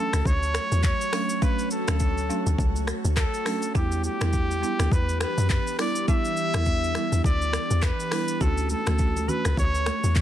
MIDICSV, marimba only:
0, 0, Header, 1, 2, 480
1, 0, Start_track
1, 0, Key_signature, 2, "major"
1, 0, Tempo, 582524
1, 1171, Time_signature, 4, 2, 24, 8
1, 8416, End_track
2, 0, Start_track
2, 0, Title_t, "Marimba"
2, 0, Program_c, 0, 12
2, 0, Note_on_c, 0, 54, 74
2, 0, Note_on_c, 0, 57, 71
2, 0, Note_on_c, 0, 61, 72
2, 0, Note_on_c, 0, 62, 83
2, 193, Note_off_c, 0, 54, 0
2, 194, Note_off_c, 0, 57, 0
2, 195, Note_off_c, 0, 61, 0
2, 196, Note_off_c, 0, 62, 0
2, 927, Note_on_c, 0, 54, 76
2, 929, Note_on_c, 0, 57, 66
2, 931, Note_on_c, 0, 61, 69
2, 933, Note_on_c, 0, 62, 86
2, 1153, Note_off_c, 0, 54, 0
2, 1154, Note_off_c, 0, 57, 0
2, 1155, Note_off_c, 0, 61, 0
2, 1155, Note_off_c, 0, 62, 0
2, 1167, Note_on_c, 0, 54, 93
2, 1168, Note_on_c, 0, 57, 82
2, 1170, Note_on_c, 0, 61, 87
2, 1172, Note_on_c, 0, 62, 100
2, 1358, Note_off_c, 0, 54, 0
2, 1359, Note_off_c, 0, 57, 0
2, 1360, Note_off_c, 0, 61, 0
2, 1361, Note_off_c, 0, 62, 0
2, 1545, Note_on_c, 0, 54, 74
2, 1546, Note_on_c, 0, 57, 72
2, 1549, Note_on_c, 0, 61, 69
2, 1550, Note_on_c, 0, 62, 88
2, 1864, Note_off_c, 0, 54, 0
2, 1865, Note_off_c, 0, 57, 0
2, 1866, Note_off_c, 0, 61, 0
2, 1867, Note_off_c, 0, 62, 0
2, 1888, Note_on_c, 0, 54, 79
2, 1890, Note_on_c, 0, 57, 73
2, 1891, Note_on_c, 0, 61, 73
2, 1893, Note_on_c, 0, 62, 86
2, 2113, Note_off_c, 0, 54, 0
2, 2114, Note_off_c, 0, 57, 0
2, 2115, Note_off_c, 0, 61, 0
2, 2116, Note_off_c, 0, 62, 0
2, 2848, Note_on_c, 0, 54, 73
2, 2850, Note_on_c, 0, 57, 68
2, 2851, Note_on_c, 0, 61, 69
2, 2853, Note_on_c, 0, 62, 79
2, 3073, Note_off_c, 0, 54, 0
2, 3074, Note_off_c, 0, 57, 0
2, 3075, Note_off_c, 0, 61, 0
2, 3076, Note_off_c, 0, 62, 0
2, 3085, Note_on_c, 0, 55, 96
2, 3087, Note_on_c, 0, 59, 82
2, 3088, Note_on_c, 0, 62, 89
2, 3091, Note_on_c, 0, 64, 100
2, 3278, Note_off_c, 0, 55, 0
2, 3278, Note_off_c, 0, 59, 0
2, 3279, Note_off_c, 0, 62, 0
2, 3280, Note_off_c, 0, 64, 0
2, 3468, Note_on_c, 0, 55, 82
2, 3470, Note_on_c, 0, 59, 72
2, 3470, Note_on_c, 0, 62, 75
2, 3473, Note_on_c, 0, 64, 88
2, 3786, Note_off_c, 0, 55, 0
2, 3786, Note_off_c, 0, 59, 0
2, 3787, Note_off_c, 0, 62, 0
2, 3788, Note_off_c, 0, 64, 0
2, 3806, Note_on_c, 0, 55, 77
2, 3808, Note_on_c, 0, 59, 75
2, 3810, Note_on_c, 0, 62, 72
2, 3812, Note_on_c, 0, 64, 85
2, 4032, Note_off_c, 0, 55, 0
2, 4033, Note_off_c, 0, 59, 0
2, 4034, Note_off_c, 0, 62, 0
2, 4035, Note_off_c, 0, 64, 0
2, 4765, Note_on_c, 0, 55, 79
2, 4768, Note_on_c, 0, 59, 69
2, 4769, Note_on_c, 0, 62, 73
2, 4771, Note_on_c, 0, 64, 84
2, 4992, Note_off_c, 0, 55, 0
2, 4993, Note_off_c, 0, 59, 0
2, 4994, Note_off_c, 0, 62, 0
2, 4995, Note_off_c, 0, 64, 0
2, 5006, Note_on_c, 0, 55, 95
2, 5008, Note_on_c, 0, 59, 86
2, 5009, Note_on_c, 0, 62, 85
2, 5011, Note_on_c, 0, 64, 99
2, 5198, Note_off_c, 0, 55, 0
2, 5199, Note_off_c, 0, 59, 0
2, 5199, Note_off_c, 0, 62, 0
2, 5201, Note_off_c, 0, 64, 0
2, 5387, Note_on_c, 0, 55, 78
2, 5388, Note_on_c, 0, 59, 69
2, 5390, Note_on_c, 0, 62, 73
2, 5391, Note_on_c, 0, 64, 86
2, 5705, Note_off_c, 0, 55, 0
2, 5705, Note_off_c, 0, 59, 0
2, 5706, Note_off_c, 0, 62, 0
2, 5707, Note_off_c, 0, 64, 0
2, 5727, Note_on_c, 0, 55, 78
2, 5730, Note_on_c, 0, 59, 73
2, 5731, Note_on_c, 0, 62, 71
2, 5733, Note_on_c, 0, 64, 84
2, 5953, Note_off_c, 0, 55, 0
2, 5954, Note_off_c, 0, 59, 0
2, 5955, Note_off_c, 0, 62, 0
2, 5956, Note_off_c, 0, 64, 0
2, 6687, Note_on_c, 0, 55, 76
2, 6687, Note_on_c, 0, 59, 67
2, 6690, Note_on_c, 0, 62, 67
2, 6691, Note_on_c, 0, 64, 82
2, 6913, Note_off_c, 0, 55, 0
2, 6913, Note_off_c, 0, 59, 0
2, 6914, Note_off_c, 0, 62, 0
2, 6915, Note_off_c, 0, 64, 0
2, 6926, Note_on_c, 0, 57, 93
2, 6928, Note_on_c, 0, 61, 86
2, 6929, Note_on_c, 0, 62, 83
2, 6931, Note_on_c, 0, 66, 106
2, 7118, Note_off_c, 0, 57, 0
2, 7119, Note_off_c, 0, 61, 0
2, 7119, Note_off_c, 0, 62, 0
2, 7120, Note_off_c, 0, 66, 0
2, 7304, Note_on_c, 0, 57, 80
2, 7306, Note_on_c, 0, 61, 70
2, 7308, Note_on_c, 0, 62, 74
2, 7310, Note_on_c, 0, 66, 88
2, 7624, Note_off_c, 0, 57, 0
2, 7625, Note_off_c, 0, 61, 0
2, 7625, Note_off_c, 0, 62, 0
2, 7626, Note_off_c, 0, 66, 0
2, 7646, Note_on_c, 0, 57, 76
2, 7647, Note_on_c, 0, 61, 71
2, 7649, Note_on_c, 0, 62, 72
2, 7651, Note_on_c, 0, 66, 85
2, 7872, Note_off_c, 0, 57, 0
2, 7873, Note_off_c, 0, 61, 0
2, 7874, Note_off_c, 0, 62, 0
2, 7875, Note_off_c, 0, 66, 0
2, 8416, End_track
0, 0, End_of_file